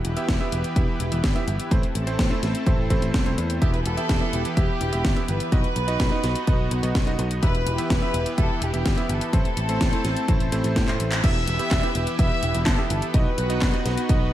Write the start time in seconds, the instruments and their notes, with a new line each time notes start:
Already playing: analog synth pad E3 E4 G4 B4
0.05 picked electric bass E1, closed hi-hat
0.17 electric grand piano B3 E4 G4 E5, closed hi-hat
0.28 picked electric bass E1, kick, snare, closed hi-hat
0.40 electric grand piano B3 E4 G4 E5
0.52 picked electric bass E1, closed hi-hat
0.64 closed hi-hat
0.76 picked electric bass E1, electric grand piano B3 E4 G4 E5, kick, closed hi-hat
1.00 picked electric bass E1, closed hi-hat
1.12 picked electric bass E1, electric grand piano B3 E4 G4 E5, closed hi-hat
1.24 picked electric bass G1, kick, snare, closed hi-hat
1.36 electric grand piano B3 E4 G4 E5, closed hi-hat
1.47 picked electric bass G1, closed hi-hat
1.60 closed hi-hat
1.71 picked electric bass A1, electric grand piano A3 C4 E4 C5, analog synth pad C4 A4, kick, closed hi-hat
1.83 closed hi-hat
1.95 picked electric bass A1, closed hi-hat
2.07 electric grand piano A3 C4 E4 C5, closed hi-hat
2.19 picked electric bass A1, kick, snare, closed hi-hat
2.31 electric grand piano A3 C4 E4 C5
2.43 picked electric bass A1, snare, closed hi-hat
2.55 closed hi-hat
2.66 picked electric bass A1, electric grand piano A3 C4 E4 C5, kick, closed hi-hat
2.90 picked electric bass A1, electric grand piano A3 C4 E4 C5, kick, closed hi-hat
3.02 picked electric bass A1, closed hi-hat
3.14 picked electric bass C2, kick, snare, closed hi-hat
3.26 electric grand piano A3 C4 E4 C5, closed hi-hat
3.38 picked electric bass E2, closed hi-hat
3.50 closed hi-hat
3.62 picked electric bass E1, analog synth pad E3 G4 B4, electric grand piano B3 E4 G4 E5, violin section G4, kick, closed hi-hat
3.74 violin section B4, closed hi-hat
3.85 picked electric bass E1, violin section A4, closed hi-hat
3.97 electric grand piano B3 E4 G4 E5, closed hi-hat
4.09 picked electric bass E1, kick, snare, closed hi-hat
4.21 electric grand piano B3 E4 G4 E5
4.33 picked electric bass E1, closed hi-hat
4.45 closed hi-hat
4.57 picked electric bass E1, electric grand piano B3 E4 G4 E5, violin section G4, kick, closed hi-hat
4.81 picked electric bass E1, closed hi-hat
4.92 picked electric bass E1, electric grand piano B3 E4 G4 E5, closed hi-hat
5.05 picked electric bass G1, kick, snare, closed hi-hat
5.16 electric grand piano B3 E4 G4 E5, closed hi-hat
5.28 picked electric bass G1, violin section B4, closed hi-hat
5.40 closed hi-hat
5.52 picked electric bass B1, electric grand piano B3 D#4 F#4 D#5, analog synth pad B3 D#4 F#4, kick, closed hi-hat
5.64 closed hi-hat
5.76 picked electric bass B1, closed hi-hat
5.88 electric grand piano B3 D#4 F#4 D#5, closed hi-hat
6.00 picked electric bass B1, kick, snare, closed hi-hat
6.12 electric grand piano B3 D#4 F#4 D#5
6.24 picked electric bass B1, snare, closed hi-hat
6.36 closed hi-hat
6.47 picked electric bass B1, electric grand piano B3 D#4 F#4 D#5, kick, closed hi-hat
6.71 picked electric bass B1, closed hi-hat
6.83 picked electric bass B1, electric grand piano B3 D#4 F#4 D#5, closed hi-hat
6.95 picked electric bass B1, kick, snare, closed hi-hat
7.07 electric grand piano B3 D#4 F#4 D#5, closed hi-hat
7.19 picked electric bass B1, closed hi-hat
7.31 closed hi-hat
7.42 picked electric bass E1, analog synth pad E3 E4 G4 B4, electric grand piano B3 E4 G4 E5, violin section B4, kick, closed hi-hat
7.55 closed hi-hat
7.66 picked electric bass E1, closed hi-hat
7.78 electric grand piano B3 E4 G4 E5, closed hi-hat
7.90 picked electric bass E1, violin section B4, kick, snare, closed hi-hat
8.02 electric grand piano B3 E4 G4 E5
8.14 picked electric bass E1, closed hi-hat
8.26 closed hi-hat
8.38 picked electric bass E1, electric grand piano B3 E4 G4 E5, violin section A4, kick, closed hi-hat
8.61 picked electric bass E1, violin section G4, closed hi-hat
8.73 picked electric bass E1, electric grand piano B3 E4 G4 E5, closed hi-hat
8.86 picked electric bass G1, kick, snare, closed hi-hat
8.97 electric grand piano B3 E4 G4 E5, closed hi-hat
9.09 picked electric bass G1, violin section A4, closed hi-hat
9.21 closed hi-hat
9.33 picked electric bass A1, electric grand piano A3 C4 E4 C5, analog synth pad C4 A4, kick, closed hi-hat
9.45 closed hi-hat
9.57 picked electric bass A1, closed hi-hat
9.69 electric grand piano A3 C4 E4 C5, closed hi-hat
9.81 picked electric bass A1, kick, snare, closed hi-hat
9.93 electric grand piano A3 C4 E4 C5, closed hi-hat
10.04 picked electric bass A1, snare, closed hi-hat
10.16 closed hi-hat
10.28 picked electric bass A1, electric grand piano A3 C4 E4 C5, kick, closed hi-hat
10.40 closed hi-hat
10.52 picked electric bass A1, electric grand piano A3 C4 E4 C5, closed hi-hat
10.64 picked electric bass A1, closed hi-hat
10.76 picked electric bass A2, kick, snare, closed hi-hat
10.88 electric grand piano A3 C4 E4 C5, clap, closed hi-hat
11.00 picked electric bass A1, closed hi-hat
11.12 clap, closed hi-hat
11.23 picked electric bass E1, analog synth pad E3 E4 G4 B4, electric grand piano B3 E4 G4 E5, violin section E5, kick, closed hi-hat, crash
11.47 picked electric bass E1, closed hi-hat
11.59 electric grand piano B3 E4 G4 E5, closed hi-hat
11.71 picked electric bass E1, kick, snare, clap, closed hi-hat
11.83 electric grand piano B3 E4 G4 E5, closed hi-hat
11.95 picked electric bass E1, closed hi-hat
12.07 closed hi-hat
12.19 picked electric bass E1, electric grand piano B3 E4 G4 E5, violin section E5, kick, closed hi-hat
12.43 picked electric bass E1, closed hi-hat
12.54 picked electric bass E1, electric grand piano B3 E4 G4 E5, closed hi-hat
12.66 picked electric bass G1, violin section A4, kick, snare, clap, closed hi-hat
12.78 electric grand piano B3 E4 G4 E5
12.90 picked electric bass G1, violin section A4, closed hi-hat
13.02 closed hi-hat
13.14 picked electric bass B1, analog synth pad B3 D#4 F#4, electric grand piano B3 D#4 F#4 D#5, violin section B4, kick, closed hi-hat
13.38 picked electric bass B1, closed hi-hat
13.50 electric grand piano B3 D#4 F#4 D#5, closed hi-hat
13.62 picked electric bass B1, kick, snare, clap, closed hi-hat
13.73 electric grand piano B3 D#4 F#4 D#5, closed hi-hat
13.85 picked electric bass B1, violin section B4, snare, closed hi-hat
13.97 closed hi-hat
14.09 picked electric bass B1, electric grand piano B3 D#4 F#4 D#5, kick, closed hi-hat